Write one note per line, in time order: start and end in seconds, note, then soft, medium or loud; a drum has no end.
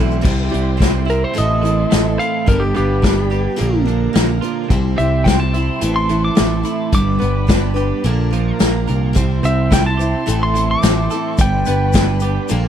0.00 0.20 B1 medium
0.00 0.24 E3 medium
0.00 0.21 A3 soft
0.00 0.24 A3 medium
0.00 0.21 C4 soft
0.00 0.24 C4 medium
0.00 0.22 E4 medium
0.00 0.24 E4 medium
0.00 0.21 A4 medium
0.00 0.23 A4 medium
0.00 0.21 C5 medium
0.00 0.21 E5 medium
0.00 0.19 C6 medium
0.11 shaker soft
0.21 0.48 C2 medium
0.21 0.51 C3 medium
0.21 0.51 G3 medium
0.21 0.51 C4 medium
0.21 2.44 E4 medium
0.21 0.49 E4 medium
0.21 0.48 G4 medium
0.21 2.45 C5 medium
0.21 1.34 G5 medium
0.21 1.34 C6 medium
0.21 kick loud
0.21 crash loud
0.49 1.36 G3 medium
0.49 0.77 C4 soft
0.49 0.78 E4 medium
0.49 0.78 G4 medium
0.54 1.23 C2 medium
0.54 closed hi-hat medium
0.77 1.07 G3 medium
0.77 1.07 C4 medium
0.77 1.07 E4 medium
0.77 1.04 G4 medium
0.77 kick medium
0.81 snare loud
0.81 closed hi-hat medium
1.05 1.34 C4 soft
1.05 1.35 E4 soft
1.05 1.35 G4 medium
1.09 1.24 A#4 medium
1.09 closed hi-hat medium
1.24 1.38 C5 medium
1.34 1.63 A2 medium
1.34 1.63 E3 medium
1.34 1.63 A3 medium
1.34 1.63 C4 medium
1.34 1.62 E4 medium
1.34 1.61 A4 medium
1.34 2.46 A5 medium
1.34 2.47 C6 medium
1.34 closed hi-hat medium
1.38 1.84 A1 medium
1.38 2.18 D#5 medium
1.62 2.46 E3 medium
1.62 1.90 C4 soft
1.62 1.92 E4 soft
1.62 1.91 A4 soft
1.62 closed hi-hat medium
1.66 1.90 A3 soft
1.91 2.16 A1 medium
1.91 2.19 A3 medium
1.91 2.19 C4 medium
1.91 2.19 E4 medium
1.91 2.18 A4 medium
1.91 snare medium
1.91 closed hi-hat medium
2.19 2.47 A3 soft
2.19 2.47 C4 soft
2.19 2.47 E4 soft
2.19 2.47 A4 soft
2.19 2.47 F5 medium
2.19 closed hi-hat medium
2.46 2.71 G1 loud
2.46 2.75 G2 medium
2.46 2.75 D3 medium
2.46 2.75 G3 medium
2.46 2.75 B3 medium
2.46 2.75 D4 medium
2.46 4.69 D4 medium
2.46 2.74 G4 medium
2.46 2.61 A#4 medium
2.46 3.59 B4 medium
2.46 3.59 G5 medium
2.46 3.59 B5 medium
2.46 kick loud
2.46 closed hi-hat medium
2.60 2.74 G4 medium
2.75 3.47 G1 medium
2.75 3.01 G3 soft
2.75 3.02 B3 soft
2.75 3.03 D4 soft
2.75 3.03 G4 soft
2.75 3.84 G4 medium
2.75 closed hi-hat medium
3.02 3.31 G3 medium
3.02 3.30 B3 medium
3.02 3.30 D4 medium
3.02 3.29 G4 medium
3.02 kick medium
3.02 snare loud
3.02 closed hi-hat medium
3.30 3.57 G3 soft
3.30 3.58 B3 soft
3.30 3.57 D4 soft
3.30 3.58 G4 medium
3.30 closed hi-hat medium
3.56 3.86 A#2 medium
3.56 3.86 D3 medium
3.56 3.86 F3 medium
3.56 3.86 A#3 medium
3.56 3.86 D4 medium
3.56 3.84 A#4 medium
3.56 4.70 F5 medium
3.56 4.70 A#5 medium
3.56 closed hi-hat medium
3.60 4.07 A#1 medium
3.60 4.70 A#4 medium
3.85 4.71 D3 medium
3.85 4.12 F3 soft
3.85 4.13 A#3 soft
3.85 4.14 D4 medium
3.85 4.14 A#4 medium
3.85 closed hi-hat medium
4.13 4.39 A#1 medium
4.13 4.42 F3 medium
4.13 4.42 A#3 medium
4.13 4.42 D4 medium
4.13 4.41 A#4 medium
4.13 snare loud
4.13 closed hi-hat medium
4.41 4.70 F3 soft
4.41 4.71 A#3 medium
4.41 4.71 D4 soft
4.41 4.70 F4 medium
4.41 4.70 A#4 medium
4.41 closed hi-hat medium
4.70 4.94 C2 loud
4.70 4.98 C3 medium
4.70 4.99 G3 medium
4.70 4.99 C4 medium
4.70 5.80 E4 medium
4.70 4.99 E4 medium
4.70 6.91 C5 medium
4.70 4.96 C5 medium
4.70 5.81 G5 medium
4.70 6.91 C6 medium
4.70 kick loud
4.70 closed hi-hat medium
4.96 5.69 C2 medium
4.96 5.81 G3 medium
4.96 5.26 E4 soft
4.96 5.26 C5 medium
4.96 5.25 E5 medium
4.96 closed hi-hat medium
5.01 5.25 C4 soft
5.24 5.54 G3 medium
5.24 5.54 C4 medium
5.24 5.54 E4 medium
5.24 5.40 G5 medium
5.24 kick medium
5.24 snare loud
5.24 closed hi-hat medium
5.29 5.53 C5 medium
5.40 5.94 A5 medium
5.54 5.82 C4 soft
5.54 5.83 E4 soft
5.54 5.82 C5 soft
5.54 closed hi-hat medium
5.81 6.29 A1 medium
5.81 6.10 A2 medium
5.81 6.10 E3 medium
5.81 6.10 A3 medium
5.81 6.10 C4 medium
5.81 6.92 E4 medium
5.81 6.09 E4 medium
5.81 6.08 A4 medium
5.81 6.92 A5 medium
5.81 closed hi-hat medium
5.96 6.23 C6 medium
6.09 6.93 E3 medium
6.09 6.34 A3 soft
6.09 6.36 C4 soft
6.09 6.36 E4 soft
6.09 6.37 A4 medium
6.09 closed hi-hat medium
6.25 6.92 D6 medium
6.35 6.64 A3 medium
6.35 6.65 C4 medium
6.35 6.64 E4 medium
6.35 6.62 A4 medium
6.35 snare loud
6.35 closed hi-hat medium
6.40 6.62 A1 loud
6.63 6.93 A3 soft
6.63 6.92 C4 soft
6.63 6.93 E4 soft
6.63 6.92 A4 soft
6.63 closed hi-hat medium
6.92 7.16 G1 loud
6.92 7.21 G2 medium
6.92 7.21 D3 medium
6.92 7.21 G3 medium
6.92 7.20 B3 medium
6.92 7.19 D4 medium
6.92 8.03 D4 medium
6.92 7.18 B4 medium
6.92 8.04 B4 medium
6.92 8.05 G5 medium
6.92 8.04 B5 medium
6.92 8.57 D6 medium
6.92 kick loud
6.92 closed hi-hat medium
7.19 7.92 G1 medium
7.19 7.46 G3 soft
7.19 7.47 B3 soft
7.19 7.48 D4 soft
7.19 7.48 B4 medium
7.19 closed hi-hat medium
7.47 7.76 G3 medium
7.47 7.76 B3 medium
7.47 7.74 D4 medium
7.47 7.73 B4 medium
7.47 kick medium
7.47 snare loud
7.47 closed hi-hat medium
7.74 8.04 G3 soft
7.74 8.05 B3 soft
7.74 8.04 D4 medium
7.74 8.05 G4 medium
7.74 8.03 B4 medium
7.74 closed hi-hat medium
8.04 8.51 A#1 medium
8.04 8.32 A#2 medium
8.04 8.32 D3 loud
8.04 8.32 F3 medium
8.04 8.32 A#3 medium
8.04 9.15 D4 medium
8.04 8.31 D4 medium
8.04 9.15 A#4 medium
8.04 8.29 A#4 loud
8.04 9.15 F5 medium
8.04 9.15 A#5 medium
8.04 closed hi-hat medium
8.30 8.58 F3 soft
8.30 8.59 A#3 medium
8.30 8.60 D4 medium
8.30 8.60 A#4 medium
8.30 closed hi-hat medium
8.59 8.86 A#1 medium
8.59 8.88 F3 medium
8.59 8.88 A#3 medium
8.59 8.87 D4 medium
8.59 8.86 A#4 medium
8.59 snare loud
8.59 closed hi-hat medium
8.87 9.14 C2 medium
8.87 9.14 F3 soft
8.87 9.15 A#3 soft
8.87 9.15 D4 medium
8.87 9.16 A#4 medium
8.87 closed hi-hat medium
9.13 9.40 C2 medium
9.13 9.43 C3 medium
9.13 9.43 G3 medium
9.13 9.44 C4 medium
9.13 9.44 E4 medium
9.13 10.27 E4 medium
9.13 9.42 C5 medium
9.13 11.37 C6 medium
9.13 kick loud
9.13 closed hi-hat medium
9.13 shaker medium
9.18 11.38 C5 medium
9.18 10.28 G5 medium
9.43 10.14 C2 medium
9.43 9.71 E4 soft
9.43 9.72 C5 medium
9.43 9.72 E5 medium
9.43 closed hi-hat medium
9.43 shaker medium
9.47 9.71 C4 soft
9.71 9.99 G3 medium
9.71 10.00 C4 medium
9.71 10.00 E4 medium
9.71 9.98 C5 medium
9.71 9.86 G5 medium
9.71 kick medium
9.71 snare loud
9.71 closed hi-hat medium
9.71 shaker medium
9.86 10.40 A5 medium
9.97 10.27 E4 soft
9.97 10.26 G4 medium
9.97 10.27 C5 soft
9.97 closed hi-hat medium
9.97 shaker medium
10.02 10.26 C4 soft
10.26 10.75 A1 medium
10.26 10.55 A2 medium
10.26 10.55 E3 medium
10.26 10.55 A3 medium
10.26 10.55 C4 medium
10.26 10.55 E4 medium
10.26 11.39 E4 medium
10.26 10.54 A4 medium
10.26 11.39 A5 medium
10.26 closed hi-hat loud
10.26 shaker medium
10.43 10.69 C6 medium
10.54 11.38 E3 medium
10.54 10.84 C4 soft
10.54 10.84 E4 soft
10.54 10.83 A4 soft
10.54 closed hi-hat medium
10.54 shaker medium
10.58 10.83 A3 soft
10.71 11.38 D6 medium
10.83 11.07 A1 loud
10.83 11.12 A3 medium
10.83 11.12 C4 medium
10.83 11.12 E4 medium
10.83 11.11 A4 medium
10.83 snare loud
10.83 closed hi-hat medium
10.83 shaker medium
11.10 11.40 C4 soft
11.10 11.40 E4 medium
11.10 11.39 A4 medium
11.10 closed hi-hat medium
11.10 shaker medium
11.15 11.39 A3 soft
11.38 11.62 G1 loud
11.38 11.67 G2 medium
11.38 11.67 D3 medium
11.38 11.67 G3 medium
11.38 11.67 B3 medium
11.38 11.67 D4 medium
11.38 12.68 D4 medium
11.38 11.66 B4 medium
11.38 12.50 B4 medium
11.38 12.68 G5 medium
11.38 12.50 G5 medium
11.38 kick loud
11.38 closed hi-hat medium
11.38 shaker medium
11.43 12.51 B5 medium
11.66 12.38 G1 medium
11.66 11.94 D4 medium
11.66 11.95 B4 medium
11.66 closed hi-hat medium
11.66 shaker medium
11.70 11.92 G3 soft
11.70 11.93 B3 soft
11.93 12.22 G3 medium
11.93 12.22 B3 medium
11.93 12.21 D4 medium
11.93 12.20 B4 medium
11.93 kick medium
11.93 snare loud
11.93 closed hi-hat medium
11.93 shaker medium
12.20 12.50 B3 medium
12.20 12.50 D4 medium
12.20 12.50 G4 medium
12.20 12.50 B4 medium
12.20 closed hi-hat medium
12.20 shaker medium
12.24 12.49 G3 medium
12.49 12.68 A#1 medium
12.49 12.68 A#2 medium
12.49 12.68 D3 medium
12.49 12.68 F3 medium
12.49 12.68 A#3 medium
12.49 12.68 D4 loud
12.49 12.68 A#4 medium
12.49 12.68 A#4 loud
12.49 12.68 F5 medium
12.49 12.68 A#5 medium
12.49 closed hi-hat medium
12.49 shaker medium